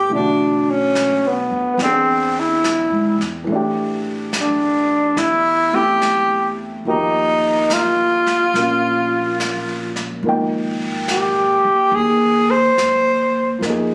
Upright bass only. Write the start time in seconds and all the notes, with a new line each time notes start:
0.10 B1
1.51 F2
1.78 E2
2.90 G#2
3.18 E2
3.47 A1
5.16 E2
6.85 D#2
8.54 A#1
10.23 G#1
11.65 muted upright bass stroke
11.92 D#2
12.77 D#2
13.61 F2